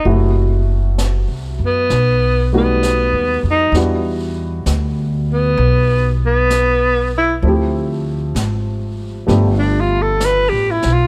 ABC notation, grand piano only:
X:1
M:4/4
L:1/8
Q:"Swing" 1/4=65
K:Elyd
V:1 name="Grand piano"
[=C,F,=A,EF]4 z [=G,A,B,DF]3 | [=G,B,=DEF]8 | [=F,=A,=CE=G]4 [F,A,B,=DG]4 |]